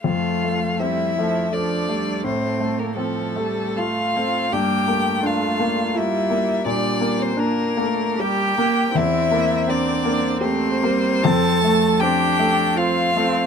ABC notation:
X:1
M:3/4
L:1/16
Q:1/4=82
K:F
V:1 name="Violin"
f4 e4 d4 | c3 B A4 f4 | g4 f4 e4 | d3 c B4 g4 |
e4 d4 c4 | a4 g4 f4 |]
V:2 name="Cello"
F4 E4 D4 | C3 B, A,4 F4 | G4 F4 E4 | D3 C B,4 G4 |
E4 D4 C4 | A4 G4 F4 |]
V:3 name="Grand piano"
F,,2 A,2 C2 A,2 A2 A,2 | A,,2 A,2 C2 A,2 F2 A,2 | G,,2 B,2 D2 B,2 F2 B,2 | B,,2 B,2 D2 B,2 G2 B,2 |
E,,2 B,2 C2 B,2 G2 B,2 | F,,2 A,2 C2 A,2 F2 A,2 |]
V:4 name="Viola"
A,4 G,2 F,2 F,2 G,2 | A,4 F,2 G,2 A,2 C2 | B,2 A,6 G,4 | G,4 B,2 A,2 G,2 B,2 |
C8 A,2 G,2 | C2 A,2 D4 C2 C2 |]